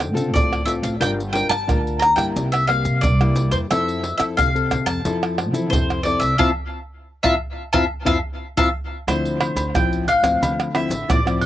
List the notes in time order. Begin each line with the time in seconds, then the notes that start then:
Already playing: D2 D3 G5
0.00 pandeiro, tamborim, maracas
0.14 D3 C4 F4 A4, pandeiro, maracas
0.34 D2 A2 D5, pandeiro, maracas, surdo
0.53 pandeiro, tamborim, maracas
0.66 C4 F4 A4 E5, pandeiro, maracas
0.83 A1 F5, pandeiro, maracas
1.00 G1 G3 D4 F4 A#4 G5, pandeiro, tamborim, maracas, surdo
1.20 pandeiro, maracas
1.33 D4 F4 A#4 G5, pandeiro
1.49 G1 A5, pandeiro, tamborim, maracas
1.67 D2 D3 D4 F4 A#4, pandeiro, tamborim, maracas, surdo
1.87 pandeiro, maracas
1.99 A#5, pandeiro, tamborim, maracas
2.16 G2 G3 A#3 E4 G5, pandeiro, tamborim, maracas
2.36 C2 C3, pandeiro, maracas, surdo
2.52 E5, pandeiro, tamborim, maracas
2.67 G3 A#3 F5, pandeiro, tamborim
2.85 C3, pandeiro, maracas
3.01 C2 G2 D5, pandeiro, maracas, surdo
3.21 G3 A#3 E4, pandeiro, tamborim, maracas
3.36 pandeiro, maracas
3.51 E2 C5, pandeiro, maracas
3.71 F2 F3 C4 E4 A4 E5, pandeiro, tamborim, maracas, surdo
3.88 pandeiro, maracas
4.04 pandeiro
4.18 F2 C4 E4 A4 E5, pandeiro, tamborim, maracas
4.37 C2 C3 F5, pandeiro, tamborim, maracas, surdo
4.55 C4 A4, pandeiro, maracas
4.71 pandeiro, tamborim, maracas, surdo
4.86 F2 A5, pandeiro, tamborim, maracas
5.05 F2 F3 C4 E4 A4, pandeiro, maracas, surdo
5.23 pandeiro, tamborim, maracas
5.38 pandeiro, tamborim
5.53 F3 C4 E4 A4, pandeiro, maracas
5.70 F2 C3 C5, pandeiro, maracas, surdo
5.90 pandeiro, tamborim, maracas
6.03 C4 E4 A4 D5, pandeiro
6.20 C2 E5, pandeiro, maracas
6.38 F2 C4 E4 F4 E5 F5 A5, surdo
7.23 F2 C4 E4 F4 E5 F5 A5, surdo
7.73 F2 C4 E4 F4 E5 F5 A5, surdo
8.05 F2 C4 E4 F4 E5 F5 A5, surdo
8.57 F2 C4 E4 F4 E5 F5 A5, surdo
9.07 D2 D3 F3 C4 E4 C5, pandeiro, tamborim, low agogo, maracas, surdo
9.25 pandeiro, maracas
9.41 pandeiro, tamborim, low agogo
9.56 D2, pandeiro, low agogo, maracas
9.74 A1 A2 F3 C4 E4 G5, pandeiro, tamborim, maracas, surdo
9.93 pandeiro, maracas
10.08 F5, pandeiro, high agogo, maracas
10.23 D2 F3 C4, pandeiro, tamborim, maracas
10.41 D2 D3, pandeiro, low agogo, maracas, surdo
10.60 pandeiro, tamborim, maracas
10.75 F3 C4 E4 E5, pandeiro, tamborim, low agogo
10.90 A1, pandeiro, maracas
11.08 A1 A2 F3 C4 E4 D5, pandeiro, tamborim, maracas, surdo
11.26 F3 C4 E4, pandeiro, tamborim, maracas
11.41 pandeiro, high agogo